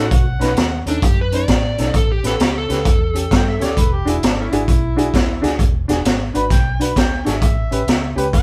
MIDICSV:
0, 0, Header, 1, 6, 480
1, 0, Start_track
1, 0, Tempo, 456621
1, 120, Time_signature, 4, 2, 24, 8
1, 8857, End_track
2, 0, Start_track
2, 0, Title_t, "Harmonica"
2, 0, Program_c, 0, 22
2, 0, Note_on_c, 0, 78, 86
2, 125, Note_off_c, 0, 78, 0
2, 134, Note_on_c, 0, 78, 88
2, 845, Note_off_c, 0, 78, 0
2, 3491, Note_on_c, 0, 79, 82
2, 3641, Note_off_c, 0, 79, 0
2, 3655, Note_on_c, 0, 76, 89
2, 3803, Note_off_c, 0, 76, 0
2, 3822, Note_on_c, 0, 74, 71
2, 3978, Note_on_c, 0, 71, 81
2, 3993, Note_off_c, 0, 74, 0
2, 4141, Note_on_c, 0, 67, 82
2, 4156, Note_off_c, 0, 71, 0
2, 4306, Note_on_c, 0, 64, 77
2, 4321, Note_off_c, 0, 67, 0
2, 4467, Note_on_c, 0, 62, 78
2, 4482, Note_off_c, 0, 64, 0
2, 4609, Note_off_c, 0, 62, 0
2, 4621, Note_on_c, 0, 57, 63
2, 4621, Note_on_c, 0, 61, 63
2, 4621, Note_on_c, 0, 64, 89
2, 4690, Note_off_c, 0, 57, 0
2, 4699, Note_off_c, 0, 61, 0
2, 5771, Note_off_c, 0, 64, 0
2, 6685, Note_on_c, 0, 83, 99
2, 6842, Note_off_c, 0, 83, 0
2, 6850, Note_on_c, 0, 79, 93
2, 7148, Note_off_c, 0, 79, 0
2, 7164, Note_on_c, 0, 83, 88
2, 7321, Note_off_c, 0, 83, 0
2, 7333, Note_on_c, 0, 79, 78
2, 7630, Note_off_c, 0, 79, 0
2, 7640, Note_on_c, 0, 69, 67
2, 7640, Note_on_c, 0, 73, 67
2, 7640, Note_on_c, 0, 76, 96
2, 7704, Note_off_c, 0, 69, 0
2, 7713, Note_off_c, 0, 73, 0
2, 8568, Note_off_c, 0, 76, 0
2, 8775, Note_on_c, 0, 78, 109
2, 8857, Note_off_c, 0, 78, 0
2, 8857, End_track
3, 0, Start_track
3, 0, Title_t, "Electric slide guitar"
3, 0, Program_c, 1, 29
3, 0, Note_on_c, 1, 66, 78
3, 260, Note_off_c, 1, 66, 0
3, 941, Note_on_c, 1, 62, 87
3, 1086, Note_off_c, 1, 62, 0
3, 1106, Note_on_c, 1, 67, 75
3, 1248, Note_off_c, 1, 67, 0
3, 1275, Note_on_c, 1, 71, 74
3, 1413, Note_off_c, 1, 71, 0
3, 1422, Note_on_c, 1, 74, 77
3, 2032, Note_off_c, 1, 74, 0
3, 2062, Note_on_c, 1, 69, 71
3, 2207, Note_off_c, 1, 69, 0
3, 2227, Note_on_c, 1, 67, 82
3, 2369, Note_off_c, 1, 67, 0
3, 2384, Note_on_c, 1, 69, 89
3, 2528, Note_off_c, 1, 69, 0
3, 2540, Note_on_c, 1, 67, 75
3, 2686, Note_off_c, 1, 67, 0
3, 2711, Note_on_c, 1, 69, 82
3, 4093, Note_off_c, 1, 69, 0
3, 8857, End_track
4, 0, Start_track
4, 0, Title_t, "Upright piano"
4, 0, Program_c, 2, 0
4, 414, Note_on_c, 2, 61, 85
4, 428, Note_on_c, 2, 63, 77
4, 439, Note_on_c, 2, 71, 92
4, 507, Note_off_c, 2, 61, 0
4, 514, Note_off_c, 2, 63, 0
4, 519, Note_off_c, 2, 71, 0
4, 907, Note_on_c, 2, 61, 70
4, 917, Note_on_c, 2, 63, 63
4, 924, Note_on_c, 2, 69, 73
4, 994, Note_off_c, 2, 61, 0
4, 998, Note_off_c, 2, 63, 0
4, 1002, Note_off_c, 2, 69, 0
4, 1386, Note_on_c, 2, 61, 71
4, 1397, Note_on_c, 2, 63, 65
4, 1408, Note_on_c, 2, 71, 71
4, 1473, Note_off_c, 2, 61, 0
4, 1478, Note_off_c, 2, 63, 0
4, 1484, Note_off_c, 2, 71, 0
4, 1867, Note_on_c, 2, 61, 72
4, 1878, Note_on_c, 2, 63, 65
4, 1888, Note_on_c, 2, 69, 84
4, 1953, Note_off_c, 2, 61, 0
4, 1959, Note_off_c, 2, 63, 0
4, 1964, Note_off_c, 2, 69, 0
4, 2345, Note_on_c, 2, 61, 66
4, 2354, Note_on_c, 2, 67, 63
4, 2366, Note_on_c, 2, 71, 77
4, 2433, Note_off_c, 2, 61, 0
4, 2437, Note_off_c, 2, 67, 0
4, 2443, Note_off_c, 2, 71, 0
4, 2821, Note_on_c, 2, 61, 76
4, 2837, Note_on_c, 2, 67, 63
4, 2843, Note_on_c, 2, 71, 70
4, 2911, Note_off_c, 2, 61, 0
4, 2918, Note_off_c, 2, 67, 0
4, 2921, Note_off_c, 2, 71, 0
4, 3300, Note_on_c, 2, 61, 67
4, 3311, Note_on_c, 2, 67, 64
4, 3317, Note_on_c, 2, 69, 77
4, 3390, Note_off_c, 2, 61, 0
4, 3395, Note_off_c, 2, 67, 0
4, 3398, Note_off_c, 2, 69, 0
4, 3781, Note_on_c, 2, 61, 84
4, 3795, Note_on_c, 2, 67, 76
4, 3805, Note_on_c, 2, 73, 96
4, 3870, Note_off_c, 2, 61, 0
4, 3877, Note_off_c, 2, 67, 0
4, 3882, Note_off_c, 2, 73, 0
4, 4260, Note_on_c, 2, 62, 84
4, 4270, Note_on_c, 2, 66, 70
4, 4283, Note_on_c, 2, 68, 86
4, 4350, Note_off_c, 2, 62, 0
4, 4355, Note_off_c, 2, 66, 0
4, 4361, Note_off_c, 2, 68, 0
4, 4750, Note_on_c, 2, 62, 86
4, 4754, Note_on_c, 2, 66, 70
4, 4764, Note_on_c, 2, 68, 94
4, 4835, Note_off_c, 2, 62, 0
4, 4837, Note_off_c, 2, 66, 0
4, 4842, Note_off_c, 2, 68, 0
4, 5218, Note_on_c, 2, 62, 83
4, 5223, Note_on_c, 2, 66, 78
4, 5233, Note_on_c, 2, 68, 92
4, 5309, Note_off_c, 2, 62, 0
4, 5311, Note_off_c, 2, 66, 0
4, 5317, Note_off_c, 2, 68, 0
4, 5695, Note_on_c, 2, 62, 91
4, 5706, Note_on_c, 2, 66, 80
4, 5712, Note_on_c, 2, 68, 95
4, 5787, Note_off_c, 2, 62, 0
4, 5793, Note_off_c, 2, 66, 0
4, 5796, Note_off_c, 2, 68, 0
4, 6182, Note_on_c, 2, 62, 82
4, 6188, Note_on_c, 2, 66, 66
4, 6203, Note_on_c, 2, 68, 91
4, 6271, Note_off_c, 2, 62, 0
4, 6274, Note_off_c, 2, 66, 0
4, 6282, Note_off_c, 2, 68, 0
4, 6661, Note_on_c, 2, 62, 70
4, 6668, Note_on_c, 2, 66, 58
4, 6681, Note_on_c, 2, 71, 82
4, 6751, Note_off_c, 2, 62, 0
4, 6754, Note_off_c, 2, 66, 0
4, 6760, Note_off_c, 2, 71, 0
4, 7142, Note_on_c, 2, 62, 65
4, 7151, Note_on_c, 2, 66, 59
4, 7164, Note_on_c, 2, 71, 71
4, 7231, Note_off_c, 2, 62, 0
4, 7236, Note_off_c, 2, 66, 0
4, 7242, Note_off_c, 2, 71, 0
4, 7615, Note_on_c, 2, 62, 68
4, 7624, Note_on_c, 2, 66, 61
4, 7637, Note_on_c, 2, 68, 74
4, 7708, Note_off_c, 2, 62, 0
4, 7712, Note_off_c, 2, 66, 0
4, 7719, Note_off_c, 2, 68, 0
4, 8103, Note_on_c, 2, 61, 75
4, 8111, Note_on_c, 2, 67, 57
4, 8122, Note_on_c, 2, 71, 75
4, 8192, Note_off_c, 2, 61, 0
4, 8196, Note_off_c, 2, 67, 0
4, 8201, Note_off_c, 2, 71, 0
4, 8572, Note_on_c, 2, 61, 78
4, 8580, Note_on_c, 2, 67, 78
4, 8596, Note_on_c, 2, 71, 89
4, 8667, Note_off_c, 2, 61, 0
4, 8670, Note_off_c, 2, 67, 0
4, 8678, Note_off_c, 2, 71, 0
4, 8857, End_track
5, 0, Start_track
5, 0, Title_t, "Fingered electric bass"
5, 0, Program_c, 3, 33
5, 119, Note_on_c, 3, 35, 96
5, 398, Note_off_c, 3, 35, 0
5, 425, Note_on_c, 3, 35, 83
5, 577, Note_off_c, 3, 35, 0
5, 590, Note_on_c, 3, 39, 82
5, 873, Note_off_c, 3, 39, 0
5, 905, Note_on_c, 3, 39, 82
5, 1057, Note_off_c, 3, 39, 0
5, 1076, Note_on_c, 3, 42, 87
5, 1505, Note_off_c, 3, 42, 0
5, 1560, Note_on_c, 3, 45, 73
5, 1839, Note_off_c, 3, 45, 0
5, 1877, Note_on_c, 3, 35, 81
5, 2024, Note_off_c, 3, 35, 0
5, 2043, Note_on_c, 3, 33, 93
5, 2320, Note_off_c, 3, 33, 0
5, 2357, Note_on_c, 3, 33, 93
5, 2504, Note_off_c, 3, 33, 0
5, 2525, Note_on_c, 3, 37, 76
5, 2801, Note_off_c, 3, 37, 0
5, 2840, Note_on_c, 3, 37, 89
5, 2986, Note_off_c, 3, 37, 0
5, 2999, Note_on_c, 3, 40, 94
5, 3427, Note_off_c, 3, 40, 0
5, 3480, Note_on_c, 3, 43, 77
5, 3759, Note_off_c, 3, 43, 0
5, 3805, Note_on_c, 3, 38, 73
5, 3948, Note_off_c, 3, 38, 0
5, 3965, Note_on_c, 3, 28, 93
5, 4241, Note_off_c, 3, 28, 0
5, 4270, Note_on_c, 3, 28, 91
5, 4420, Note_off_c, 3, 28, 0
5, 4446, Note_on_c, 3, 32, 79
5, 4722, Note_off_c, 3, 32, 0
5, 4759, Note_on_c, 3, 32, 80
5, 4906, Note_off_c, 3, 32, 0
5, 4920, Note_on_c, 3, 35, 78
5, 5348, Note_off_c, 3, 35, 0
5, 5401, Note_on_c, 3, 38, 74
5, 5679, Note_off_c, 3, 38, 0
5, 5716, Note_on_c, 3, 38, 85
5, 5863, Note_off_c, 3, 38, 0
5, 5880, Note_on_c, 3, 28, 81
5, 6159, Note_off_c, 3, 28, 0
5, 6192, Note_on_c, 3, 28, 89
5, 6341, Note_off_c, 3, 28, 0
5, 6362, Note_on_c, 3, 32, 81
5, 6640, Note_off_c, 3, 32, 0
5, 6673, Note_on_c, 3, 32, 83
5, 6822, Note_off_c, 3, 32, 0
5, 6838, Note_on_c, 3, 35, 81
5, 7267, Note_off_c, 3, 35, 0
5, 7319, Note_on_c, 3, 38, 80
5, 7598, Note_off_c, 3, 38, 0
5, 7638, Note_on_c, 3, 32, 82
5, 7785, Note_off_c, 3, 32, 0
5, 7799, Note_on_c, 3, 33, 85
5, 8078, Note_off_c, 3, 33, 0
5, 8109, Note_on_c, 3, 33, 86
5, 8260, Note_off_c, 3, 33, 0
5, 8275, Note_on_c, 3, 37, 79
5, 8556, Note_off_c, 3, 37, 0
5, 8588, Note_on_c, 3, 37, 85
5, 8740, Note_off_c, 3, 37, 0
5, 8761, Note_on_c, 3, 40, 88
5, 8857, Note_off_c, 3, 40, 0
5, 8857, End_track
6, 0, Start_track
6, 0, Title_t, "Drums"
6, 119, Note_on_c, 9, 36, 110
6, 119, Note_on_c, 9, 42, 77
6, 224, Note_off_c, 9, 36, 0
6, 224, Note_off_c, 9, 42, 0
6, 431, Note_on_c, 9, 42, 59
6, 442, Note_on_c, 9, 38, 31
6, 536, Note_off_c, 9, 42, 0
6, 548, Note_off_c, 9, 38, 0
6, 593, Note_on_c, 9, 42, 78
6, 605, Note_on_c, 9, 38, 107
6, 699, Note_off_c, 9, 42, 0
6, 710, Note_off_c, 9, 38, 0
6, 909, Note_on_c, 9, 42, 57
6, 1014, Note_off_c, 9, 42, 0
6, 1074, Note_on_c, 9, 42, 76
6, 1076, Note_on_c, 9, 36, 115
6, 1179, Note_off_c, 9, 42, 0
6, 1181, Note_off_c, 9, 36, 0
6, 1389, Note_on_c, 9, 42, 61
6, 1494, Note_off_c, 9, 42, 0
6, 1553, Note_on_c, 9, 42, 78
6, 1557, Note_on_c, 9, 36, 75
6, 1565, Note_on_c, 9, 38, 104
6, 1658, Note_off_c, 9, 42, 0
6, 1662, Note_off_c, 9, 36, 0
6, 1670, Note_off_c, 9, 38, 0
6, 1874, Note_on_c, 9, 42, 63
6, 1886, Note_on_c, 9, 38, 34
6, 1979, Note_off_c, 9, 42, 0
6, 1991, Note_off_c, 9, 38, 0
6, 2038, Note_on_c, 9, 42, 78
6, 2039, Note_on_c, 9, 36, 105
6, 2143, Note_off_c, 9, 42, 0
6, 2144, Note_off_c, 9, 36, 0
6, 2354, Note_on_c, 9, 42, 59
6, 2366, Note_on_c, 9, 38, 31
6, 2459, Note_off_c, 9, 42, 0
6, 2471, Note_off_c, 9, 38, 0
6, 2519, Note_on_c, 9, 42, 90
6, 2531, Note_on_c, 9, 38, 111
6, 2625, Note_off_c, 9, 42, 0
6, 2636, Note_off_c, 9, 38, 0
6, 2834, Note_on_c, 9, 42, 57
6, 2845, Note_on_c, 9, 38, 27
6, 2939, Note_off_c, 9, 42, 0
6, 2951, Note_off_c, 9, 38, 0
6, 2999, Note_on_c, 9, 42, 88
6, 3000, Note_on_c, 9, 36, 118
6, 3104, Note_off_c, 9, 42, 0
6, 3105, Note_off_c, 9, 36, 0
6, 3315, Note_on_c, 9, 42, 67
6, 3420, Note_off_c, 9, 42, 0
6, 3482, Note_on_c, 9, 36, 79
6, 3484, Note_on_c, 9, 42, 86
6, 3496, Note_on_c, 9, 38, 110
6, 3587, Note_off_c, 9, 36, 0
6, 3589, Note_off_c, 9, 42, 0
6, 3601, Note_off_c, 9, 38, 0
6, 3797, Note_on_c, 9, 42, 69
6, 3808, Note_on_c, 9, 38, 34
6, 3902, Note_off_c, 9, 42, 0
6, 3913, Note_off_c, 9, 38, 0
6, 3962, Note_on_c, 9, 36, 96
6, 3963, Note_on_c, 9, 42, 81
6, 4068, Note_off_c, 9, 36, 0
6, 4069, Note_off_c, 9, 42, 0
6, 4280, Note_on_c, 9, 42, 63
6, 4385, Note_off_c, 9, 42, 0
6, 4445, Note_on_c, 9, 42, 87
6, 4456, Note_on_c, 9, 38, 110
6, 4550, Note_off_c, 9, 42, 0
6, 4561, Note_off_c, 9, 38, 0
6, 4756, Note_on_c, 9, 42, 59
6, 4861, Note_off_c, 9, 42, 0
6, 4920, Note_on_c, 9, 36, 97
6, 4921, Note_on_c, 9, 42, 75
6, 5025, Note_off_c, 9, 36, 0
6, 5026, Note_off_c, 9, 42, 0
6, 5236, Note_on_c, 9, 42, 53
6, 5341, Note_off_c, 9, 42, 0
6, 5400, Note_on_c, 9, 36, 79
6, 5405, Note_on_c, 9, 42, 74
6, 5416, Note_on_c, 9, 38, 100
6, 5505, Note_off_c, 9, 36, 0
6, 5510, Note_off_c, 9, 42, 0
6, 5521, Note_off_c, 9, 38, 0
6, 5714, Note_on_c, 9, 42, 61
6, 5726, Note_on_c, 9, 38, 35
6, 5820, Note_off_c, 9, 42, 0
6, 5831, Note_off_c, 9, 38, 0
6, 5877, Note_on_c, 9, 36, 102
6, 5879, Note_on_c, 9, 42, 77
6, 5982, Note_off_c, 9, 36, 0
6, 5984, Note_off_c, 9, 42, 0
6, 6189, Note_on_c, 9, 42, 58
6, 6201, Note_on_c, 9, 38, 28
6, 6294, Note_off_c, 9, 42, 0
6, 6306, Note_off_c, 9, 38, 0
6, 6361, Note_on_c, 9, 42, 87
6, 6372, Note_on_c, 9, 38, 109
6, 6466, Note_off_c, 9, 42, 0
6, 6477, Note_off_c, 9, 38, 0
6, 6671, Note_on_c, 9, 42, 60
6, 6776, Note_off_c, 9, 42, 0
6, 6838, Note_on_c, 9, 36, 101
6, 6838, Note_on_c, 9, 42, 78
6, 6850, Note_on_c, 9, 38, 28
6, 6943, Note_off_c, 9, 36, 0
6, 6944, Note_off_c, 9, 42, 0
6, 6955, Note_off_c, 9, 38, 0
6, 7154, Note_on_c, 9, 42, 70
6, 7259, Note_off_c, 9, 42, 0
6, 7319, Note_on_c, 9, 36, 70
6, 7320, Note_on_c, 9, 42, 82
6, 7332, Note_on_c, 9, 38, 107
6, 7424, Note_off_c, 9, 36, 0
6, 7425, Note_off_c, 9, 42, 0
6, 7437, Note_off_c, 9, 38, 0
6, 7634, Note_on_c, 9, 42, 65
6, 7645, Note_on_c, 9, 38, 31
6, 7739, Note_off_c, 9, 42, 0
6, 7750, Note_off_c, 9, 38, 0
6, 7797, Note_on_c, 9, 42, 82
6, 7798, Note_on_c, 9, 36, 106
6, 7903, Note_off_c, 9, 36, 0
6, 7903, Note_off_c, 9, 42, 0
6, 8114, Note_on_c, 9, 42, 59
6, 8219, Note_off_c, 9, 42, 0
6, 8280, Note_on_c, 9, 42, 82
6, 8291, Note_on_c, 9, 38, 102
6, 8385, Note_off_c, 9, 42, 0
6, 8396, Note_off_c, 9, 38, 0
6, 8595, Note_on_c, 9, 42, 58
6, 8700, Note_off_c, 9, 42, 0
6, 8760, Note_on_c, 9, 36, 99
6, 8762, Note_on_c, 9, 42, 84
6, 8857, Note_off_c, 9, 36, 0
6, 8857, Note_off_c, 9, 42, 0
6, 8857, End_track
0, 0, End_of_file